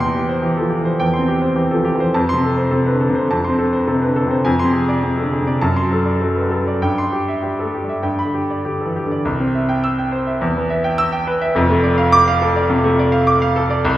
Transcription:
0.00 0.96 E2 medium
0.00 1.00 G5 medium
0.00 0.23 C6 medium
0.05 0.35 E3 medium
0.15 0.37 G4 medium
0.29 0.52 C5 medium
0.42 0.73 E3 medium
0.42 0.65 G4 medium
0.57 0.71 A4 medium
0.61 0.81 F3 medium
0.70 0.94 G4 medium
0.81 1.11 E3 medium
0.85 1.08 C5 medium
1.00 2.11 E2 medium
1.00 1.22 G5 medium
1.14 1.37 C6 medium
1.19 1.49 C4 medium
1.28 1.51 G4 medium
1.42 1.65 C5 medium
1.56 1.87 E3 medium
1.56 1.79 G4 medium
1.71 1.94 F3 medium
1.71 1.86 A4 medium
1.85 2.08 G4 medium
1.95 2.14 E3 medium
2.00 2.14 C5 medium
2.14 3.26 F2 medium
2.14 2.37 A5 medium
2.29 2.52 C6 medium
2.34 2.64 C3 medium
2.43 2.66 A4 medium
2.57 2.80 C5 medium
2.71 3.02 C3 medium
2.71 2.94 A4 medium
2.86 3.00 B4 medium
2.92 3.10 D3 medium
3.01 3.23 A4 medium
3.10 3.40 C3 medium
3.15 3.38 C5 medium
3.31 4.42 F2 medium
3.31 3.53 A5 medium
3.44 3.67 C6 medium
3.49 3.79 C4 medium
3.59 3.81 A4 medium
3.73 3.96 C5 medium
3.88 4.18 C3 medium
3.88 4.10 A4 medium
4.02 4.16 B4 medium
4.07 4.25 D3 medium
4.16 4.39 A4 medium
4.27 4.45 C3 medium
4.31 4.45 C5 medium
4.45 5.57 F2 medium
4.45 4.67 G#5 medium
4.59 4.82 C6 medium
4.64 4.94 C3 medium
4.73 4.96 G#4 medium
4.88 5.11 D5 medium
5.03 5.34 C3 medium
5.03 5.26 G#4 medium
5.17 5.32 A4 medium
5.22 5.41 D3 medium
5.32 5.55 G#4 medium
5.42 5.61 C3 medium
5.47 5.61 D5 medium
5.61 6.78 F#2 medium
5.61 5.85 A5 medium
5.76 6.00 C6 medium
5.81 6.13 F#3 medium
5.91 6.15 A4 medium
6.05 6.29 D5 medium
6.21 6.53 F#3 medium
6.21 6.45 A4 medium
6.36 6.51 B4 medium
6.41 6.61 G3 soft
6.51 6.75 A4 medium
6.61 6.81 F#3 medium
6.67 6.82 D5 medium
6.82 8.01 G2 medium
6.82 7.06 G5 medium
6.98 7.22 C6 medium
7.03 7.36 G3 medium
7.12 7.37 G4 medium
7.28 7.53 E5 medium
7.43 7.76 G3 medium
7.43 7.67 G4 medium
7.59 7.74 A4 medium
7.65 7.84 A3 soft
7.75 7.99 G4 medium
7.84 8.04 G3 soft
7.89 8.04 E5 medium
8.03 9.21 G2 medium
8.03 8.28 G5 medium
8.19 8.43 B5 medium
8.25 8.57 D3 soft
8.34 8.59 G4 medium
8.50 8.74 D5 medium
8.65 8.97 D3 medium
8.65 8.89 G4 medium
8.81 8.95 A4 medium
8.86 9.05 E3 soft
8.96 9.19 G4 medium
9.06 9.25 D3 medium
9.11 9.25 D5 medium
9.25 10.37 C2 medium
9.40 9.63 C4 medium
9.55 9.78 E5 medium
9.69 9.92 G5 medium
9.84 10.06 E6 medium
9.98 10.21 G5 medium
10.12 10.35 C5 medium
10.27 10.41 E5 medium
10.41 11.52 E2 medium
10.57 10.79 B3 medium
10.70 10.93 E5 medium
10.84 11.07 G5 medium
10.98 11.21 E6 loud
11.12 11.35 G5 medium
11.27 11.50 B4 medium
11.41 11.55 E5 medium
11.55 12.67 F1 medium
11.55 12.67 F2 medium
11.70 11.93 A3 medium
11.84 12.07 D5 medium
11.98 12.21 F5 medium
12.12 12.36 D6 loud
12.28 12.50 F5 medium
12.42 12.65 A4 medium
12.56 12.79 D5 medium
12.69 12.93 C3 medium
12.84 13.07 A3 medium
12.99 13.22 D5 medium
13.12 13.35 F5 medium
13.27 13.50 D6 medium
13.42 13.64 F5 medium
13.56 13.79 A4 medium
13.70 13.84 D5 medium
13.85 13.97 C2 loud

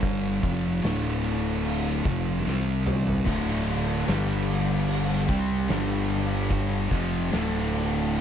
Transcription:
0.00 0.39 G1 loud
0.00 0.42 G2 medium
0.00 0.42 D3 loud
0.00 0.42 G3 loud
0.00 kick loud
0.00 crash medium
0.43 0.81 F1 loud
0.43 0.82 F2 loud
0.43 0.83 C3 loud
0.43 0.83 F3 loud
0.43 kick loud
0.43 crash medium
0.83 2.01 D1 loud
0.83 2.04 D2 loud
0.83 2.04 A2 loud
0.83 2.05 D3 loud
0.83 snare loud
0.83 crash medium
1.24 crash medium
1.65 crash medium
2.05 2.43 F1 loud
2.05 2.46 F2 medium
2.05 2.46 C3 loud
2.05 2.46 F3 loud
2.05 kick loud
2.05 crash medium
2.46 3.23 C2 medium
2.46 3.26 C3 medium
2.46 3.26 G3 loud
2.46 3.26 C4 loud
2.46 snare medium
2.86 mid tom loud
3.07 floor tom loud
3.26 4.04 D1 medium
3.26 4.06 D2 medium
3.26 4.07 A2 medium
3.26 4.07 D3 medium
3.26 kick loud
3.26 crash loud
3.49 snare soft
3.67 crash medium
4.07 5.26 G1 loud
4.07 5.28 G2 loud
4.07 5.28 D3 loud
4.07 5.28 G3 medium
4.07 snare loud
4.07 crash medium
4.48 crash medium
4.88 crash loud
5.10 snare soft
5.28 5.67 C2 loud
5.28 5.69 C3 medium
5.28 5.69 G3 medium
5.28 5.69 C4 loud
5.28 kick loud
5.28 crash medium
5.68 6.87 G1 medium
5.68 6.90 G2 loud
5.68 6.91 D3 medium
5.68 6.90 G3 loud
5.68 snare loud
5.68 crash medium
6.10 crash medium
6.50 kick loud
6.50 crash medium
6.91 7.29 F1 loud
6.91 7.31 F2 loud
6.91 7.31 C3 loud
6.91 7.31 F3 loud
6.91 kick loud
6.91 crash medium
7.31 8.21 D1 loud
7.31 8.21 D2 loud
7.31 8.21 A2 loud
7.31 8.21 D3 loud
7.31 snare loud
7.31 crash medium
7.73 crash medium
8.13 crash medium

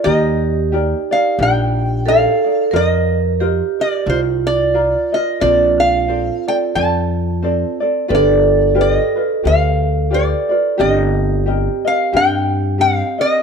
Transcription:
0.04 0.92 D#2 loud
0.04 0.72 D#4 medium
0.04 2.12 G4 medium
0.04 0.71 G4 medium
0.04 0.71 A#4 medium
0.04 0.67 D#5 medium
0.72 1.11 D#4 medium
0.72 1.10 G4 medium
0.72 1.11 A#4 medium
0.72 1.10 D5 medium
1.11 1.39 D#4 soft
1.11 1.39 A#4 medium
1.11 1.39 D5 medium
1.11 1.40 F5 medium
1.39 2.26 A#1 loud
1.39 2.07 D#4 medium
1.39 2.05 G4 medium
1.39 2.73 A#4 medium
1.39 2.07 D5 medium
1.39 2.08 G5 medium
2.06 2.45 D#4 medium
2.06 2.44 G4 medium
2.06 2.75 A4 loud
2.06 2.43 D5 medium
2.06 2.76 F5 medium
2.44 2.73 D#4 soft
2.44 2.72 D5 medium
2.71 3.60 F2 loud
2.71 3.40 F4 medium
2.71 3.41 A#4 loud
2.71 3.41 A#4 medium
2.71 3.40 C5 medium
2.71 3.40 D#5 medium
2.76 3.81 D#5 medium
3.40 3.79 F4 medium
3.40 4.09 G4 medium
3.40 3.79 A#4 medium
3.40 3.79 C5 medium
3.40 3.79 D#5 medium
3.80 4.06 F4 soft
3.80 4.07 A#4 soft
3.80 4.09 D5 medium
4.06 4.94 C2 medium
4.06 5.39 F4 medium
4.06 4.74 F4 medium
4.06 4.74 A#4 medium
4.06 4.74 C5 medium
4.06 4.20 C5 medium
4.47 5.14 D5 medium
4.74 5.13 F4 medium
4.74 5.13 A#4 medium
4.74 5.12 C5 medium
5.12 5.41 F4 soft
5.12 5.42 A#4 soft
5.12 5.41 D#5 medium
5.40 6.29 A#1 loud
5.40 6.07 C4 medium
5.40 7.77 F4 medium
5.40 6.08 A4 medium
5.40 6.07 C5 medium
5.40 5.81 D5 loud
5.40 6.09 D5 medium
5.80 6.48 F5 medium
6.08 6.47 C4 medium
6.08 6.47 A4 medium
6.08 6.47 C5 medium
6.08 6.46 D5 medium
6.48 6.75 C4 soft
6.48 6.76 A4 soft
6.48 6.76 D5 medium
6.48 6.56 G5 medium
6.75 7.63 F2 medium
6.75 7.41 C4 medium
6.75 7.42 A4 medium
6.75 7.41 C5 medium
6.75 7.44 D5 medium
6.75 7.77 A5 medium
7.42 7.81 C4 medium
7.42 7.81 A4 medium
7.42 7.81 C5 medium
7.42 7.79 D5 medium
7.80 8.08 C4 medium
7.80 8.08 A4 medium
7.80 8.08 D5 medium
8.08 8.97 G1 loud
8.08 8.74 F4 medium
8.08 8.75 G4 medium
8.08 10.74 A4 loud
8.08 8.74 B4 medium
8.08 8.76 D5 medium
8.15 8.80 D5 medium
8.75 9.15 F4 medium
8.75 9.15 G4 medium
8.75 9.14 B4 medium
8.81 9.48 D#5 medium
9.16 9.43 F4 soft
9.16 9.44 B4 soft
9.43 10.32 D2 medium
9.43 10.10 F4 medium
9.43 10.10 G4 medium
9.43 10.11 B4 medium
9.43 10.11 D5 medium
9.43 10.15 F5 loud
10.10 10.50 F4 medium
10.10 10.50 G4 medium
10.10 10.49 B4 medium
10.10 10.48 D5 medium
10.10 10.80 D5 medium
10.49 10.78 F4 soft
10.49 10.77 B4 soft
10.49 10.78 D5 medium
10.78 11.67 G1 loud
10.78 11.46 C4 medium
10.78 11.45 G4 medium
10.78 13.43 G4 loud
10.78 11.46 A#4 medium
10.78 11.47 D#5 medium
10.78 11.43 D#5 medium
11.46 11.85 C4 medium
11.46 11.85 G4 medium
11.46 11.85 A#4 medium
11.46 11.83 D#5 medium
11.85 12.13 C4 soft
11.85 12.13 A#4 medium
11.85 12.13 D#5 medium
11.85 12.15 F5 medium
12.13 13.01 G2 medium
12.13 12.79 C4 medium
12.13 12.77 G4 medium
12.13 12.79 A#4 medium
12.13 12.80 D#5 medium
12.17 12.81 G5 loud
12.78 13.18 C4 medium
12.78 13.18 G4 medium
12.78 13.18 A#4 medium
12.78 13.17 D#5 medium
12.78 13.20 F5 loud
13.18 13.43 C4 soft
13.18 13.43 A#4 medium
13.18 13.43 D#5 medium

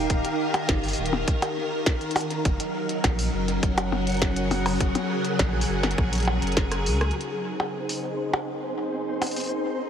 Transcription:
0.00 2.45 D#3 loud
0.00 3.67 D#4 medium
0.00 2.45 G4 medium
0.00 9.90 A#4 medium
0.00 2.45 F5 loud
0.10 0.22 D#1 medium
0.10 kick loud
0.10 closed hi-hat medium
0.25 closed hi-hat medium
0.54 closed hi-hat soft
0.54 percussion blips medium
0.69 0.93 G1 medium
0.69 kick loud
0.69 snare loud
0.69 closed hi-hat medium
0.84 open hi-hat soft
0.88 open hi-hat medium
0.93 open hi-hat medium
0.98 1.23 D#1 medium
1.06 closed hi-hat soft
1.13 percussion blips medium
1.28 kick loud
1.28 closed hi-hat medium
1.42 closed hi-hat medium
1.42 percussion blips medium
1.86 kick loud
1.86 snare loud
1.86 closed hi-hat medium
2.01 closed hi-hat soft
2.11 closed hi-hat soft
2.16 open hi-hat medium
2.16 percussion blips medium
2.21 closed hi-hat soft
2.31 closed hi-hat soft
2.45 2.57 F#1 loud
2.45 7.16 F#3 medium
2.45 kick loud
2.45 closed hi-hat medium
2.60 closed hi-hat medium
2.88 8.30 C#3 medium
2.88 closed hi-hat soft
3.04 3.28 A#1 medium
3.04 kick loud
3.04 snare loud
3.04 closed hi-hat medium
3.04 percussion blips medium
3.19 open hi-hat medium
3.34 3.58 F#1 medium
3.34 7.16 F#5 medium
3.48 9.90 G#4 medium
3.48 closed hi-hat soft
3.63 4.77 F#1 medium
3.63 kick loud
3.63 closed hi-hat medium
3.78 closed hi-hat medium
3.78 percussion blips medium
3.92 percussion blips medium
4.07 closed hi-hat soft
4.10 closed hi-hat soft
4.12 closed hi-hat soft
4.14 closed hi-hat soft
4.17 closed hi-hat soft
4.19 snare loud
4.19 closed hi-hat soft
4.22 kick loud
4.22 closed hi-hat medium
4.36 closed hi-hat medium
4.51 open hi-hat medium
4.51 percussion blips loud
4.66 open hi-hat medium
4.66 percussion blips medium
4.68 open hi-hat soft
4.71 open hi-hat soft
4.73 open hi-hat soft
4.76 open hi-hat soft
4.78 4.93 F#1 loud
4.78 kick loud
4.78 closed hi-hat medium
4.78 open hi-hat soft
4.95 closed hi-hat medium
4.95 percussion blips medium
5.25 closed hi-hat soft
5.39 5.64 A#1 medium
5.39 kick loud
5.39 snare loud
5.39 closed hi-hat medium
5.39 percussion blips medium
5.61 open hi-hat medium
5.69 5.93 F#1 medium
5.83 snare medium
5.83 percussion blips medium
5.91 closed hi-hat soft
5.98 6.38 A#1 loud
5.98 kick loud
6.13 closed hi-hat medium
6.15 closed hi-hat soft
6.18 closed hi-hat soft
6.20 closed hi-hat soft
6.23 closed hi-hat soft
6.25 closed hi-hat soft
6.25 percussion blips medium
6.42 6.88 F#1 loud
6.42 closed hi-hat soft
6.47 closed hi-hat soft
6.52 closed hi-hat soft
6.57 kick loud
6.57 cross-stick medium
6.57 snare loud
6.57 closed hi-hat medium
6.72 cross-stick medium
6.72 closed hi-hat medium
6.86 7.11 C#2 medium
6.86 open hi-hat medium
7.01 cross-stick medium
7.01 closed hi-hat soft
7.11 closed hi-hat soft
7.16 9.90 C4 medium
7.16 9.90 D#4 medium
7.16 9.90 C5 medium
7.21 closed hi-hat soft
7.60 percussion blips soft
7.89 open hi-hat medium
8.33 percussion blips medium
9.22 open hi-hat medium
9.22 percussion blips soft
9.27 open hi-hat medium
9.31 open hi-hat soft
9.36 open hi-hat soft
9.40 open hi-hat soft
9.44 open hi-hat soft
9.46 open hi-hat soft

